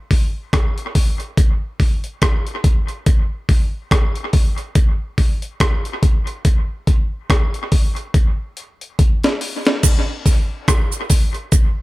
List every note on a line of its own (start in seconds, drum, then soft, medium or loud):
0.11 kick medium
0.11 open hi-hat soft
0.53 kick loud
0.53 cross-stick medium
0.53 closed hi-hat medium
0.78 closed hi-hat soft
0.95 kick medium
0.95 open hi-hat medium
1.20 closed hi-hat medium
1.37 kick loud
1.37 closed hi-hat medium
1.80 kick medium
1.80 open hi-hat soft
2.04 closed hi-hat medium
2.22 kick loud
2.22 cross-stick loud
2.22 closed hi-hat medium
2.47 closed hi-hat soft
2.64 kick loud
2.64 closed hi-hat medium
2.88 closed hi-hat soft
3.06 kick loud
3.06 closed hi-hat loud
3.49 kick medium
3.49 open hi-hat soft
3.91 kick loud
3.91 cross-stick loud
3.91 closed hi-hat medium
4.15 closed hi-hat soft
4.33 kick medium
4.33 open hi-hat medium
4.58 closed hi-hat soft
4.75 kick loud
4.75 closed hi-hat medium
5.18 kick medium
5.18 open hi-hat soft
5.42 closed hi-hat medium
5.60 kick medium
5.60 cross-stick loud
5.60 closed hi-hat medium
5.85 closed hi-hat medium
6.03 kick loud
6.03 closed hi-hat medium
6.27 closed hi-hat soft
6.45 kick medium
6.45 closed hi-hat medium
6.87 kick medium
6.87 closed hi-hat medium
7.30 kick medium
7.30 cross-stick loud
7.30 closed hi-hat medium
7.54 closed hi-hat soft
7.72 kick medium
7.72 open hi-hat medium
7.96 closed hi-hat soft
8.14 kick loud
8.14 closed hi-hat medium
8.57 closed hi-hat medium
8.81 closed hi-hat medium
8.99 kick loud
8.99 closed hi-hat medium
9.24 snare medium
9.24 closed hi-hat medium
9.41 open hi-hat medium
9.65 snare medium
9.65 closed hi-hat soft
9.83 kick loud
9.83 closed hi-hat loud
9.83 crash medium
9.83 cabasa medium
10.26 kick medium
10.26 open hi-hat medium
10.26 cabasa soft
10.68 kick loud
10.68 cross-stick loud
10.68 closed hi-hat medium
10.68 cabasa medium
10.92 closed hi-hat soft
10.92 cabasa soft
11.10 kick loud
11.10 open hi-hat medium
11.10 cabasa medium
11.34 closed hi-hat soft
11.52 kick loud
11.52 closed hi-hat loud
11.52 cabasa medium